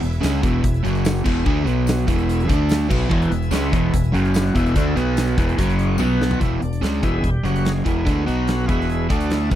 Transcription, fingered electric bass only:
0.02 0.21 E1 medium
0.23 0.42 C#2 medium
0.44 0.62 E1 loud
0.64 0.83 E1 medium
0.85 1.23 F#1 medium
1.26 1.45 E1 medium
1.46 1.65 D2 medium
1.67 2.05 B1 medium
2.08 2.46 E1 loud
2.49 2.87 D2 medium
2.91 3.10 B1 loud
3.11 3.30 E1 loud
3.30 3.50 E1 medium
3.51 3.70 C#2 loud
3.73 3.92 E1 loud
3.94 4.12 E1 medium
4.13 4.52 F#1 medium
4.55 4.74 E1 medium
4.76 4.95 D2 medium
4.96 5.34 B1 medium
5.37 5.57 E1 loud
5.59 5.97 F#1 medium
5.99 6.38 B1 medium
6.41 6.60 E1 medium
6.61 6.81 E1 medium
6.82 7.01 C#2 medium
7.04 7.22 E1 medium
7.24 7.43 E1 medium
7.43 7.82 F#1 medium
7.86 8.05 E1 medium
8.07 8.26 D2 medium
8.28 8.66 B1 medium
8.69 9.07 E1 loud
9.11 9.49 D2 medium
9.51 9.55 B1 medium

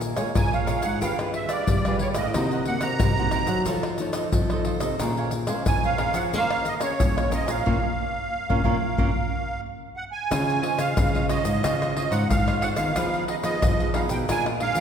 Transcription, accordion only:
0.37 0.53 G#5 medium
0.54 0.87 F5 medium
0.83 1.00 F#5 medium
1.02 1.17 F5 medium
1.34 1.52 E5 medium
1.49 1.96 D5 medium
2.01 2.08 C#5 medium
2.17 2.64 D#5 medium
2.66 2.84 F#5 loud
2.82 3.62 A#5 loud
5.67 5.84 G#5 loud
5.85 6.18 F5 medium
6.16 6.23 F#5 medium
6.35 6.68 F5 loud
6.67 6.75 D#5 medium
6.82 7.34 C#5 medium
7.34 7.50 D#5 medium
7.49 9.61 F5 medium
9.96 10.04 F#5 loud
10.12 10.82 G#5 medium
10.79 11.26 F5 medium
11.30 11.94 D#5 loud
11.96 12.14 D#5 medium
12.11 12.28 F#5 medium
12.30 12.64 F5 loud
12.62 12.70 F#5 loud
12.77 13.24 F5 medium
13.29 13.36 D#5 medium
13.43 13.91 D#5 loud
13.94 14.02 F5 medium
14.11 14.18 G5 loud
14.30 14.45 G#5 loud
14.62 14.80 F5 loud

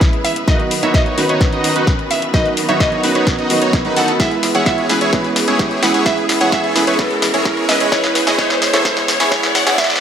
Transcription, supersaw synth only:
0.48 0.63 D#4 loud
0.48 0.63 F#4 medium
0.48 0.63 B4 loud
0.83 1.15 D#4 medium
0.83 1.15 F#4 medium
0.83 1.15 C#5 medium
1.18 1.26 D#4 medium
1.18 1.26 F#4 medium
1.18 1.26 B4 medium
1.29 1.50 D#4 medium
1.29 1.50 F#4 medium
1.29 1.50 C#5 loud
1.52 1.73 D#4 medium
1.52 1.73 F#4 medium
1.52 1.73 D#5 loud
1.76 1.91 D#4 loud
1.76 1.91 F#4 medium
1.76 1.91 B4 loud
2.34 2.49 D#4 medium
2.34 2.49 F#4 medium
2.34 2.49 B4 loud
2.69 3.01 D#4 medium
2.69 3.01 F#4 medium
2.69 3.01 C#5 medium
3.04 3.12 D#4 medium
3.04 3.12 F#4 medium
3.04 3.12 B4 loud
3.15 3.36 D#4 medium
3.15 3.36 F#4 medium
3.15 3.36 C#5 loud
3.38 3.59 D#4 medium
3.38 3.59 F#4 medium
3.38 3.59 D#5 loud
3.62 3.77 D#4 loud
3.62 3.77 F#4 medium
3.62 3.77 C#5 loud
3.85 3.94 D#4 medium
3.85 3.94 F#4 medium
3.85 3.94 B4 loud
3.97 4.12 D#4 medium
3.97 4.12 F#4 medium
3.97 4.12 A4 loud
4.20 4.35 E4 medium
4.20 4.35 G#4 medium
4.20 4.35 B4 loud
4.55 4.87 E4 medium
4.55 4.87 G#4 medium
4.55 4.87 C#5 medium
4.90 4.98 E4 medium
4.90 4.98 G#4 medium
4.90 4.98 B4 medium
5.01 5.11 E4 medium
5.01 5.11 G#4 medium
5.01 5.11 C#5 medium
5.13 5.28 E4 medium
5.13 5.28 G#4 medium
5.13 5.28 B4 loud
5.48 5.80 E4 medium
5.48 5.80 G#4 medium
5.48 5.80 C#5 medium
5.83 5.91 E4 medium
5.83 5.91 G#4 medium
5.83 5.91 B4 medium
5.94 6.04 E4 medium
5.94 6.04 G#4 medium
5.94 6.04 C#5 medium
6.06 6.21 E4 medium
6.06 6.21 G#4 medium
6.06 6.21 B4 loud
6.41 6.73 E4 medium
6.41 6.73 G#4 medium
6.41 6.73 C#5 medium
6.76 6.85 E4 medium
6.76 6.85 G#4 medium
6.76 6.85 B4 medium
6.87 6.97 E4 medium
6.87 6.97 G#4 medium
6.87 6.97 C#5 loud
6.99 7.14 E4 medium
6.99 7.14 G#4 medium
6.99 7.14 B4 loud
7.34 7.66 E4 medium
7.34 7.66 G#4 medium
7.34 7.66 C#5 medium
7.69 7.78 E4 medium
7.69 7.78 G#4 medium
7.69 7.78 B4 medium
7.80 7.90 E4 medium
7.80 7.90 G#4 medium
7.80 7.90 C#5 loud
7.92 8.07 G#4 medium
7.92 8.07 B4 loud
8.27 8.37 E4 medium
8.27 8.37 G#4 medium
8.27 8.37 C#5 medium
8.38 8.53 E4 loud
8.38 8.53 G#4 medium
8.38 8.53 B4 loud
8.73 8.83 E4 medium
8.73 8.83 G#4 medium
8.73 8.83 C#5 medium
8.85 9.00 E4 loud
8.85 9.00 B4 loud
9.20 9.30 E4 medium
9.20 9.30 G#4 medium
9.20 9.30 C#5 medium
9.31 9.46 B4 loud
9.66 9.76 E4 medium
9.66 9.76 G#4 medium
9.66 9.76 C#5 medium
9.78 9.93 B4 loud

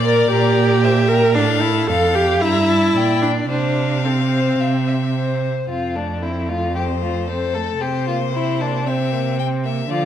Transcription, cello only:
0.00 0.28 A#2 medium
0.30 1.37 A#2 medium
1.36 1.90 A2 medium
1.88 2.43 F2 medium
2.41 2.94 G2 medium
2.95 3.49 A#2 soft
3.49 4.58 C3 soft
4.60 5.47 C3 soft
5.70 7.77 F2 soft
7.81 9.87 C3 soft
9.90 10.05 D3 soft

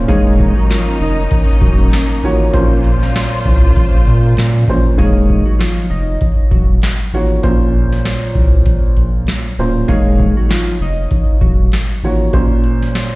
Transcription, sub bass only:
0.09 0.52 D#1 loud
1.01 1.28 F1 loud
1.49 1.54 D#1 medium
1.62 1.89 D#1 loud
2.23 2.51 A1 medium
2.54 2.97 A#1 loud
3.46 3.73 C2 loud
3.94 4.06 A#1 medium
4.07 4.34 A#2 loud
4.38 4.65 A#2 loud
4.68 4.95 A#1 medium
4.99 5.42 D#1 loud
5.91 6.18 F1 loud
6.39 6.44 D#1 soft
6.52 6.79 D#1 loud
7.13 7.40 A1 medium
7.44 7.87 A#1 loud
8.35 8.63 C2 loud
8.84 8.89 A#1 soft
8.97 9.24 A#1 medium
9.58 9.85 D1 medium
9.89 10.32 D#1 loud
10.80 11.08 F1 loud
11.29 11.34 D#1 soft
11.41 11.69 D#1 loud
12.03 12.30 A1 medium

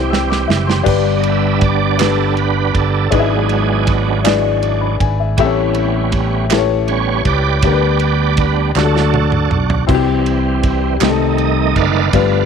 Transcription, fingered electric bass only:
0.00 0.45 C2 loud
0.49 0.84 F#1 medium
0.87 2.71 G1 medium
2.75 3.09 G1 medium
3.12 4.96 G#1 loud
5.01 5.35 G#1 medium
5.38 7.22 A1 loud
7.25 7.60 C#2 medium
7.63 8.72 D2 medium
8.76 9.47 D2 loud
9.51 9.85 B1 medium
9.89 10.97 C2 loud
11.01 11.72 C2 loud
11.76 12.10 F#1 medium
12.13 12.45 G1 loud

